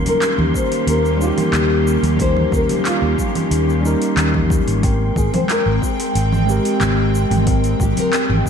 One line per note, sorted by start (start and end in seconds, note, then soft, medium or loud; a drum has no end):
0.00 4.79 D#3 medium
0.00 1.15 G3 medium
0.00 4.79 A#3 medium
0.00 1.16 C#4 medium
0.00 4.79 C#4 medium
0.00 1.17 D#4 medium
0.00 4.79 G4 medium
0.00 1.18 A#4 medium
0.00 8.50 A#4 medium
0.00 8.50 C6 medium
0.06 0.56 A#4 medium
0.06 open hi-hat soft
0.06 high conga medium
0.06 low conga medium
0.06 shaker soft
0.22 clap loud
0.22 open hi-hat medium
0.22 shaker soft
0.38 0.50 D#2 medium
0.38 low conga medium
0.54 0.89 C5 loud
0.54 kick medium
0.54 shaker medium
0.72 open hi-hat soft
0.72 shaker soft
0.87 1.30 D#2 medium
0.87 1.19 A#4 loud
0.87 open hi-hat medium
0.87 shaker soft
1.06 shaker soft
1.17 2.14 G3 medium
1.17 2.15 C#4 medium
1.21 2.16 D#4 medium
1.21 1.83 G4 medium
1.21 2.17 G4 loud
1.21 shaker medium
1.38 open hi-hat soft
1.38 low conga medium
1.38 shaker soft
1.53 1.96 D#2 medium
1.53 clap loud
1.53 open hi-hat medium
1.53 low conga medium
1.53 shaker soft
1.87 shaker medium
2.02 2.45 D#2 medium
2.02 open hi-hat soft
2.02 high conga medium
2.02 shaker soft
2.16 3.79 G3 medium
2.16 3.80 C#4 medium
2.16 kick loud
2.16 open hi-hat medium
2.20 3.81 D#4 medium
2.20 3.82 A#4 medium
2.20 2.54 C5 loud
2.20 shaker soft
2.37 low conga medium
2.52 2.65 D#2 loud
2.52 2.62 A#4 loud
2.52 kick loud
2.52 shaker medium
2.69 open hi-hat soft
2.69 high conga medium
2.69 low conga medium
2.69 shaker soft
2.80 2.86 G4 medium
2.85 3.21 F4 medium
2.85 clap medium
2.85 open hi-hat medium
2.85 shaker soft
3.02 3.14 D#2 medium
3.18 3.82 G4 medium
3.18 kick medium
3.18 high conga medium
3.18 shaker medium
3.35 open hi-hat soft
3.35 low conga medium
3.35 shaker soft
3.51 3.94 D#2 medium
3.51 open hi-hat medium
3.51 shaker soft
3.70 shaker soft
3.81 4.77 G3 loud
3.81 4.79 C#4 medium
3.85 4.80 D#4 medium
3.85 4.81 A#4 loud
3.85 shaker medium
4.02 open hi-hat soft
4.02 shaker soft
4.17 4.60 D#2 loud
4.17 clap loud
4.17 open hi-hat medium
4.17 shaker soft
4.34 kick medium
4.34 low conga medium
4.50 kick loud
4.50 high conga medium
4.50 shaker medium
4.67 5.09 G#1 medium
4.67 open hi-hat soft
4.67 shaker soft
4.80 6.42 G#3 medium
4.80 6.44 C4 medium
4.80 8.50 C4 medium
4.80 kick loud
4.80 open hi-hat medium
4.84 8.50 G#3 medium
4.84 6.46 A#4 medium
4.84 8.50 G5 medium
4.84 6.45 G5 medium
4.84 shaker soft
5.16 5.29 G#1 loud
5.16 5.34 G#4 medium
5.16 kick loud
5.16 shaker medium
5.34 5.39 C5 loud
5.34 open hi-hat soft
5.34 high conga medium
5.34 low conga medium
5.34 shaker soft
5.50 5.80 A#4 loud
5.50 clap loud
5.50 open hi-hat medium
5.50 shaker soft
5.66 5.78 G#1 medium
5.82 6.44 G#4 medium
5.82 kick medium
5.82 shaker medium
6.00 open hi-hat soft
6.00 shaker soft
6.15 6.58 G#1 medium
6.15 open hi-hat medium
6.15 shaker soft
6.33 low conga medium
6.33 shaker soft
6.45 7.42 G#3 medium
6.45 7.43 C4 medium
6.45 shaker medium
6.50 7.44 G4 medium
6.50 7.45 A#4 loud
6.65 open hi-hat soft
6.65 shaker soft
6.80 7.24 G#1 medium
6.80 clap loud
6.80 open hi-hat medium
6.80 low conga medium
6.80 shaker soft
7.15 shaker medium
7.31 7.73 G#1 medium
7.31 open hi-hat soft
7.31 high conga medium
7.31 low conga medium
7.31 shaker soft
7.44 8.50 G#3 medium
7.44 8.50 C4 medium
7.44 kick loud
7.44 open hi-hat medium
7.48 8.50 A#4 medium
7.48 8.50 G5 medium
7.48 shaker soft
7.64 open hi-hat soft
7.64 shaker soft
7.80 7.93 G#1 loud
7.80 7.99 G4 medium
7.80 kick loud
7.80 shaker medium
7.96 8.15 A#4 loud
7.96 open hi-hat soft
7.96 high conga medium
7.96 low conga medium
7.96 shaker soft
8.13 8.50 G#4 loud
8.13 clap loud
8.13 open hi-hat medium
8.13 shaker soft
8.30 8.42 G#1 medium
8.30 low conga medium
8.46 kick medium
8.46 high conga medium